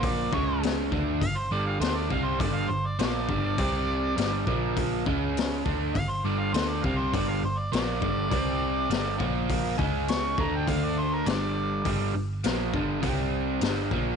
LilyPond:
<<
  \new Staff \with { instrumentName = "Harmonica" } { \time 4/4 \key g \minor \tempo 4 = 102 d''8 cis''8 r4 f''16 c''16 d''16 f''16 c''16 d''16 f''16 c''16 | d''16 f''16 c''16 d''16 d''2. | r2 f''16 c''16 d''16 f''16 c''16 d''16 f''16 c''16 | d''16 f''16 c''16 d''16 d''2. |
r4 cis'''8 bes''16 g''16 f''16 d''16 c''16 bes'16 d''4 | r1 | }
  \new Staff \with { instrumentName = "Overdriven electric guitar" } { \clef bass \time 4/4 \key g \minor <bes, f bes>8 <cis gis cis'>4 <d a d'>8 <g, d>8 <g, d g>8 <d a d'>8 <c g c'>8 | <g, d g>8 <g, d>8 <bes, f bes>8 <g, d g>8 <c g c'>4 <g, d g>8 <bes, f bes>8~ | <bes, f bes>8 <cis gis cis'>4 <d a d'>8 <g, d>8 <g, d g>8 <d a d'>8 <c g c'>8 | <g, d g>8 <g, d>8 <bes, f bes>8 <g, d g>8 <c g c'>4 <g, d g>8 <bes, f bes>8~ |
<bes, f bes>8 <cis gis cis'>4 <d a d'>8 <d a d'>4 <g, d g>4 | <g, d g>8 <g, d>8 <bes, f bes>8 <g, d g>8 <c g c'>4 <g, d g>8 <bes, f bes>8 | }
  \new Staff \with { instrumentName = "Picked electric bass" } { \clef bass \time 4/4 \key g \minor bes,,8 cis,4 d,8 g,,8 g,,8 d,8 c,8 | g,,8 g,,8 bes,,8 g,,8 c,4 g,,8 bes,,8~ | bes,,8 cis,4 d,8 g,,8 g,,8 d,8 c,8 | g,,8 g,,8 bes,,8 g,,8 c,4 g,,8 bes,,8~ |
bes,,8 cis,4 d,8 d,4 g,,4 | g,,8 g,,8 bes,,8 g,,8 c,4 g,,8 bes,,8 | }
  \new DrumStaff \with { instrumentName = "Drums" } \drummode { \time 4/4 <hho bd>8 bd8 <hho sn>8 bd8 <hho bd>4 <hho sn>8 bd8 | <hho bd>4 <hho sn>8 bd8 <hho bd>4 <hho sn>8 bd8 | <hho bd>8 bd8 <hho sn>8 bd8 <hho bd>4 <hho sn>8 bd8 | <hho bd>4 <hho sn>8 bd8 <hho bd>4 <hho sn>8 bd8 |
<hho bd>8 bd8 <hho sn>8 bd8 <hho bd>4 <hho sn>4 | <hho bd>4 <hho sn>8 bd8 <hho bd>4 <hho sn>8 bd8 | }
>>